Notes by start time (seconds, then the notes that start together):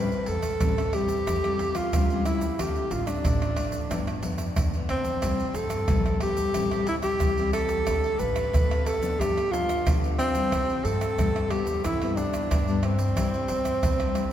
Already playing: A2 G3 C4 E4 B4
0.12 pandeiro, shaker
0.26 E2 A4, pandeiro
0.43 pandeiro, tamborim, shaker, surdo
0.60 A1 E3 G3 C4 E4, pandeiro, tamborim, shaker, surdo
0.78 pandeiro, tamborim, shaker
0.93 G3 C4 E4 G4, pandeiro, tamborim
1.09 pandeiro, shaker, surdo
1.27 E2 A2, pandeiro, tamborim, shaker, surdo
1.44 G3 C4 E4, pandeiro, tamborim, shaker
1.59 pandeiro, surdo
1.75 F4, pandeiro, tamborim, shaker
1.93 C#2 G3 C4 E4, pandeiro, tamborim, shaker, surdo
2.10 G3 C4 E4, pandeiro, shaker
2.25 G3 C4 E4, pandeiro, tamborim, shaker, surdo
2.41 pandeiro, shaker, surdo
2.59 D2 D3 A3 C4 F4 G4, pandeiro, tamborim, shaker, surdo
2.76 pandeiro, shaker
2.91 A1 F4, pandeiro, shaker
3.07 A3 C4 D4 F4, pandeiro, tamborim, shaker, surdo
3.24 A1 A2, pandeiro, tamborim, shaker, surdo
3.42 pandeiro, tamborim, shaker
3.56 A3 C4 F4, pandeiro, tamborim
3.72 pandeiro, shaker, surdo
3.90 G1 G2 F3 B3 D4, pandeiro, tamborim, shaker, surdo
4.07 pandeiro, tamborim, shaker
4.23 F2 F3 B3 D4, pandeiro, shaker, surdo
4.38 pandeiro, tamborim, shaker
4.56 E2 D3, pandeiro, tamborim, shaker, surdo
4.74 F3 B3 D4, pandeiro, shaker
4.89 D2 C4, pandeiro, tamborim, surdo
5.04 pandeiro, shaker, surdo
5.22 C2 C3 G3 E4, pandeiro, tamborim, shaker, surdo
5.40 pandeiro, shaker
5.55 G2 A4, pandeiro, shaker
5.70 pandeiro, tamborim, shaker, surdo
5.88 A#1 G2 G3 B3 E4, pandeiro, tamborim, shaker, surdo
6.06 pandeiro, tamborim, shaker
6.20 G3 B3 E4 G4, pandeiro, tamborim
6.37 pandeiro, shaker, surdo
6.54 A1 A2 G3 C4 E4, pandeiro, tamborim, shaker, surdo
6.71 G3 C4 E4, pandeiro, tamborim, shaker
6.87 E4, pandeiro, surdo
7.03 G4, pandeiro, tamborim, shaker
7.20 C2 E3 G3 C4 E4, pandeiro, tamborim, shaker, surdo
7.38 G3 C4 E4, pandeiro, shaker
7.53 A4, pandeiro, tamborim, shaker
7.69 pandeiro, shaker, surdo
7.87 D2 D3 A3 C4 F4, pandeiro, tamborim, shaker, surdo
8.04 pandeiro, shaker
8.19 A1 A3 C4 F4 B4, pandeiro, shaker
8.36 pandeiro, tamborim, shaker, surdo
8.53 D2 A2, pandeiro, tamborim, shaker, surdo
8.70 A3 C4 F4, pandeiro, tamborim, shaker
8.86 A4, pandeiro, tamborim, shaker
9.01 F3 B3 D4, pandeiro, shaker, surdo
9.19 G1 G2 G4, pandeiro, tamborim, shaker, surdo
9.38 pandeiro, tamborim, shaker
9.52 F3 B3 D4 F4, pandeiro, shaker, surdo
9.69 pandeiro, tamborim, shaker
9.86 D2 D3, pandeiro, tamborim, shaker, surdo
10.04 F3 B3 D4, pandeiro, shaker
10.18 C4, pandeiro, tamborim, shaker, surdo
10.35 G3 E4, pandeiro, shaker, surdo
10.52 C2 C3, pandeiro, tamborim, shaker, surdo
10.70 pandeiro, shaker
10.85 G2 A4, pandeiro
11.01 pandeiro, tamborim, shaker, surdo
11.18 C2 G2 G3 B3 E4, pandeiro, tamborim, shaker, surdo
11.36 pandeiro, tamborim, shaker
11.50 G3 B3 E4 G4, pandeiro, tamborim
11.67 pandeiro, shaker, surdo
11.84 G2 C3 E4, pandeiro, tamborim, shaker, surdo
12.02 G3 B3 E4, pandeiro, tamborim, shaker
12.17 D4, pandeiro, shaker, surdo
12.34 pandeiro, tamborim, shaker
12.51 G2 G3 B3 E4, pandeiro, tamborim, shaker, surdo
12.68 G3 B3 E4, pandeiro, shaker
12.83 G3 B3 C4 E4, pandeiro, tamborim
12.99 pandeiro, shaker, surdo
13.16 C2 C3 G3 E4, pandeiro, tamborim, shaker, surdo
13.34 pandeiro, shaker
13.48 G2, pandeiro, shaker
13.65 pandeiro, tamborim, shaker, surdo
13.83 C2 G2 G3 B3 E4, pandeiro, tamborim, shaker, surdo
14.00 pandeiro, tamborim, shaker
14.14 G3 E4, pandeiro, tamborim, shaker